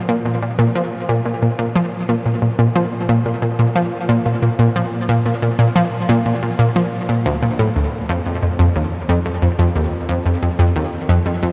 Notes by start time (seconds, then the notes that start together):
0.09 A#2
0.26 A#2
0.42 A#2
0.59 A#2
0.75 F3
1.09 A#2
1.26 A#2
1.42 A#2
1.59 A#2
1.76 F3
2.09 A#2
2.26 A#2
2.42 A#2
2.59 A#2
2.76 F3
3.09 A#2
3.26 A#2
3.42 A#2
3.59 A#2
3.76 F3
4.09 A#2
4.26 A#2
4.42 A#2
4.59 A#2
4.76 F3
5.09 A#2
5.26 A#2
5.42 A#2
5.59 A#2
5.76 F3
6.09 A#2
6.26 A#2
6.43 A#2
6.59 A#2
6.76 F3
7.09 A#2
7.26 D2
7.43 A#2
7.59 A2
7.76 D2
8.09 F2
8.26 F2
8.42 F2
8.59 F2
8.76 D#2
9.09 F2
9.26 F2
9.42 F2
9.59 F2
9.76 D#2
10.09 F2
10.26 F2
10.42 F2
10.59 F2
10.76 D#2
11.09 F2
11.26 F2
11.43 F2